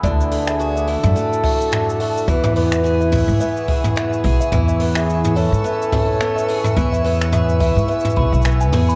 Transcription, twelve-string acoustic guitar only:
X:1
M:4/4
L:1/8
Q:"Swing 16ths" 1/4=107
K:Emix
V:1 name="Twelve-string acoustic guitar"
D, A, F E A, F A, F | E, B, G E B, G B, G | E, B,2 C B,2 B, G | E, B, G E B, G B, G |]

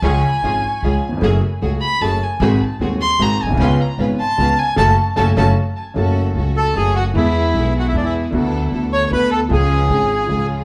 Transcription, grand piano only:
X:1
M:3/4
L:1/16
Q:1/4=152
K:F#m
V:1 name="Grand piano" clef=bass
[C,,C,^E,G,CG]2 z2 [G,,,G,,E,G,CG]2 z2 [C,,C,E,G,CG]2 z/2 ^D,,/2 =E,,/2 ^E,,/2 | [F,,F,A,CG]2 z2 [C,,C,F,A,CG]2 z2 [F,,F,A,CG]2 z2 | [G,,,G,,^D,G,^B,F]2 z2 [^D,,,^D,,D,G,B,F]2 z2 [G,,,G,,D,G,B,F]2 z/2 ^A,,,/2 =B,,,/2 ^B,,,/2 | [C,,C,G,B,^E]2 z2 [G,,,G,,C,G,B,E]2 z2 [C,,C,G,B,E]2 z2 |
[C,F,A,]2 z2 [C,F,A,]2 [C,F,A,]2 z4 | [F,,C,F,A,F]4 [C,,C,F,A,F]4 [F,,C,F,A,F]4 | [E,,E,G,B,G]4 [B,,,B,,E,G,B,G]4 [E,,E,G,B,G]4 | [D,,D,A,B,F]4 [D,,D,A,B,F]4 [D,,D,A,B,F]4 |
[C,,C,^E,G,CG]4 [G,,,G,,E,G,CG]4 [C,,C,E,G,CG]4 |]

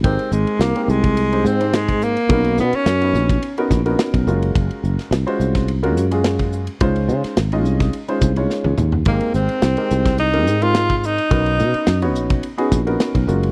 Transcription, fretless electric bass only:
X:1
M:4/4
L:1/16
Q:1/4=106
K:Ab
V:1 name="Fretless electric bass" clef=bass
A,,, z A,,, z C,, z C,,4 A,,6 | =B,,,2 =B,, z ^F,,2 ^A,,,2 z2 A,,,2 z B,,, _G,,,2 | _G,,, z G,,, z C,, z C,,4 _G,,6 | D,,2 D, z A,,,2 C,,2 z2 C,,2 z D,, E,,2 |
A,,, z A,,, z C,, z C,,4 A,,6 | =B,,,2 =B,, z ^F,,2 ^A,,,2 z2 A,,,2 z B,,, _G,,,2 |]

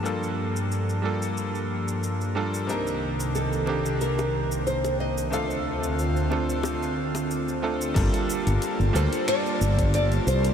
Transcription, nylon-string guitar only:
X:1
M:4/4
L:1/8
Q:"Swing 16ths" 1/4=91
K:Gm
V:1 name="Nylon-string guitar"
z8 | B2 A2 B2 c e | f6 z2 | z3 c d2 d c |]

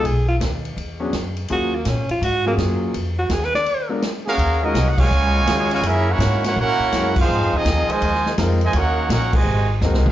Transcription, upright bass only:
X:1
M:4/4
L:1/8
Q:"Swing" 1/4=166
K:Bbm
V:1 name="Upright bass" clef=bass
=B,,,2 ^D,,2 =E,,2 ^F,,2 | E,,2 B,, z A,,2 G,,2 | F,,2 E,,2 z4 | [K:Ebm] E,,2 =C,,2 D,,2 E,,2 |
G,,2 A,,2 B,, z G,,2 | (3A,, F,, E,, E,, z E,,2 F,,2 | E,,2 B,,,2 A,,,2 (3E,, =C,, A,,, |]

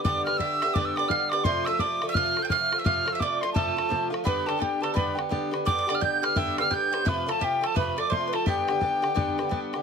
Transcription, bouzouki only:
X:1
M:4/4
L:1/8
Q:"Swing" 1/4=171
K:Gmix
V:1 name="Bouzouki"
[G,,D,B,G] [D,B,G] [G,,D,B,G] [D,B,G] [G,,D,B,G] [D,B,G] [G,,D,B,G] [D,B,G] | [C,F,A,F] [F,A,F] [C,F,A,F] [F,A,F] [C,F,A,F] [F,A,F] [C,F,A,F] [F,A,F] | [C,F,A,F] [F,A,F] [C,F,A,F] [F,A,F] [C,F,A,F] [F,A,F] [C,F,A,F] [F,A,F] | [G,,D,B,G] [D,B,G] [G,,D,B,G] [D,B,G] [G,,D,B,G] [D,B,G] [G,,D,B,G] [D,B,G] |
[G,,D,B,G] [D,B,G] [G,,D,B,G] [D,B,G] [G,,D,B,G] [D,B,G] [G,,D,B,G] [D,B,G] | [C,F,A,F] [F,A,F] [C,F,A,F] [F,A,F] [C,F,A,F] [F,A,F] [C,F,A,F] [F,A,F] | [G,,D,B,G] [D,B,G] [G,,D,B,G] [D,B,G] [G,,D,B,G] [D,B,G] [G,,D,B,G] [D,B,G] |]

